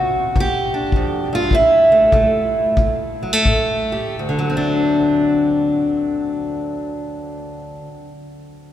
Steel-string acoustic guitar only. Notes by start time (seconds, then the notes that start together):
Already playing: D2 C4 F#4
0.36 G2
0.40 G4
0.74 D4
0.96 F2
1.33 G2 F4
1.53 A2 E4
1.92 A3
2.12 A2 A3
2.77 A2
3.23 F#3
3.33 A3
3.47 A2
3.92 G4
4.19 D2
4.29 D3
4.39 F#3
4.50 C4
4.57 D4